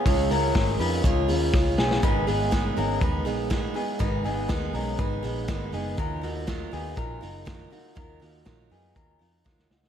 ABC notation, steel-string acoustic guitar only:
X:1
M:4/4
L:1/8
Q:1/4=121
K:Abdor
V:1 name="Steel-string acoustic guitar"
[D,A,DFA] [DFA] [A,DFA] [DFA] [D,A,DFA] [DFA] [A,DFA] [DA] | [A,,E,A,CEA] [A,CEA] [A,,E,A,CEA] [A,CEA] [A,CEA] [A,CEA] [A,,E,A,CEA] [A,CEA] | [A,,E,A,CEA] [A,CEA] [A,,E,A,CEA] [A,CEA] [A,CEA] [A,CEA] [A,,E,A,CEA] [A,CEA] | [E,G,EFB] [EFB] [E,G,EFB] [EFB] [G,EFB] [EFB] [E,G,EFB] [EFB] |
[E,G,EFB] [EFB] [E,G,EFB] [EFB] [G,EFB] [EFB] [E,G,EFB] [EFB] |]